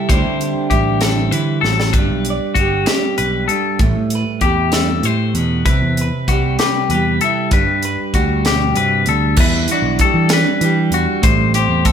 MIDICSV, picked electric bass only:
0, 0, Header, 1, 2, 480
1, 0, Start_track
1, 0, Key_signature, 1, "major"
1, 0, Tempo, 618557
1, 77, Time_signature, 6, 3, 24, 8
1, 9251, End_track
2, 0, Start_track
2, 0, Title_t, "Picked electric bass"
2, 0, Program_c, 0, 34
2, 70, Note_on_c, 0, 38, 90
2, 183, Note_off_c, 0, 38, 0
2, 194, Note_on_c, 0, 50, 71
2, 415, Note_off_c, 0, 50, 0
2, 547, Note_on_c, 0, 33, 79
2, 1000, Note_off_c, 0, 33, 0
2, 1022, Note_on_c, 0, 50, 77
2, 1247, Note_off_c, 0, 50, 0
2, 1266, Note_on_c, 0, 33, 77
2, 1489, Note_off_c, 0, 33, 0
2, 1504, Note_on_c, 0, 31, 77
2, 1619, Note_off_c, 0, 31, 0
2, 1622, Note_on_c, 0, 35, 68
2, 1847, Note_off_c, 0, 35, 0
2, 1979, Note_on_c, 0, 31, 77
2, 2205, Note_off_c, 0, 31, 0
2, 2473, Note_on_c, 0, 35, 78
2, 2693, Note_off_c, 0, 35, 0
2, 2942, Note_on_c, 0, 33, 86
2, 3056, Note_off_c, 0, 33, 0
2, 3060, Note_on_c, 0, 45, 74
2, 3286, Note_off_c, 0, 45, 0
2, 3425, Note_on_c, 0, 40, 79
2, 3879, Note_off_c, 0, 40, 0
2, 3903, Note_on_c, 0, 45, 75
2, 4127, Note_off_c, 0, 45, 0
2, 4144, Note_on_c, 0, 40, 81
2, 4368, Note_off_c, 0, 40, 0
2, 4387, Note_on_c, 0, 36, 86
2, 4500, Note_off_c, 0, 36, 0
2, 4511, Note_on_c, 0, 40, 72
2, 4732, Note_off_c, 0, 40, 0
2, 4872, Note_on_c, 0, 36, 75
2, 5093, Note_off_c, 0, 36, 0
2, 5349, Note_on_c, 0, 40, 79
2, 5571, Note_off_c, 0, 40, 0
2, 5828, Note_on_c, 0, 31, 87
2, 5941, Note_off_c, 0, 31, 0
2, 5948, Note_on_c, 0, 43, 70
2, 6171, Note_off_c, 0, 43, 0
2, 6319, Note_on_c, 0, 38, 78
2, 6767, Note_off_c, 0, 38, 0
2, 6792, Note_on_c, 0, 43, 71
2, 7014, Note_off_c, 0, 43, 0
2, 7033, Note_on_c, 0, 38, 73
2, 7254, Note_off_c, 0, 38, 0
2, 7276, Note_on_c, 0, 40, 106
2, 7496, Note_off_c, 0, 40, 0
2, 7622, Note_on_c, 0, 35, 94
2, 7739, Note_off_c, 0, 35, 0
2, 7867, Note_on_c, 0, 52, 94
2, 8091, Note_off_c, 0, 52, 0
2, 8234, Note_on_c, 0, 52, 90
2, 8455, Note_off_c, 0, 52, 0
2, 8463, Note_on_c, 0, 40, 81
2, 8580, Note_off_c, 0, 40, 0
2, 8720, Note_on_c, 0, 33, 90
2, 9049, Note_off_c, 0, 33, 0
2, 9068, Note_on_c, 0, 40, 80
2, 9251, Note_off_c, 0, 40, 0
2, 9251, End_track
0, 0, End_of_file